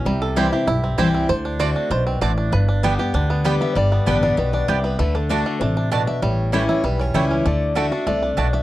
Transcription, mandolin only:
\new Staff \with { instrumentName = "Mandolin" } { \time 4/4 \key g \major \tempo 4 = 195 r4 <c' e' c'' g''>8 r4. <c' e' c'' g''>8 r8 | r4 <c' fis' d'' a''>8 r4. <c' fis' d'' a''>8 r8 | r4 <b g' d'' g''>8 r4. <b g' d'' g''>8 r8 | r4 <b g' d'' g''>8 r4. <b g' d'' g''>8 r8 |
r4 <a fis' d'' a''>8 r4. <a fis' d'' a''>8 r8 | r4 <a e' cis'' g''>8 r4. <a e' cis'' g''>8 r8 | r4 <a fis' d'' a''>8 r4. <a fis' d'' a''>8 r8 | }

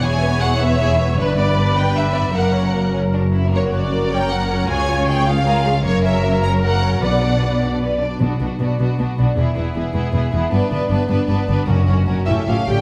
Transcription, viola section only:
\new Staff \with { instrumentName = "Viola section" } { \time 6/8 \key b \minor \tempo 4. = 103 cis''2. | b'2. | ais'2~ ais'16 r8. | fis'4. ais'4. |
cis''4. gis'8 ais'8 gis'8 | ais'2. | d''2~ d''16 r8. | b8 b8 b8 b8 b8 b8 |
b8 b8 b8 b8 b8 b8 | b8 b8 b8 b8 b8 b8 | cis'8 cis'8 cis'8 cis'8 cis'8 cis'8 | }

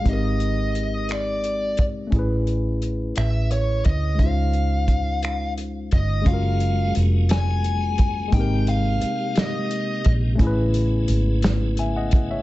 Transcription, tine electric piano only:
\new Staff \with { instrumentName = "Tine electric piano" } { \time 6/8 \key ges \lydian \tempo 4. = 58 << { r2. | r2. | r2. | r2. |
r2. | r2 <e'' gis''>16 <ees'' ges''>8 <cis'' e''>16 | } \\ { <aes c' ees' g' bes'>2. | <a cis' e' gis' b'>2. | <aes des' ees' f' c''>2. | <aes des' f' ges' bes'>2. |
<aes bes c' ees' g' bes'>2. | <a cis' e' gis' b'>2. | } >> }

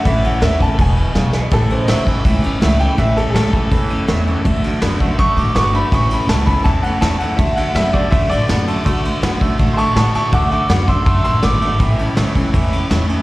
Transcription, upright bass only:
\new Staff \with { instrumentName = "Upright bass" } { \clef bass \time 4/4 \key a \major \tempo 4 = 163 a,,4 dis,4 e,,4 b,,4 | a,,4 cis,4 cis,8 e,8 cis,4 | a,,4 cis,4 e,4 e,4 | d,4 fis,4 fis,8 a,8 g,,4 |
a,,4 cis,4 e,4 e,4 | d,4 fis,4 fis,8 a,8 fis,4 | d,4 fis,4 a,4 a,4 | d,4 fis,4 fis,8 a,8 gis,,4 |
a,,4 cis,4 e,4 e,4 | }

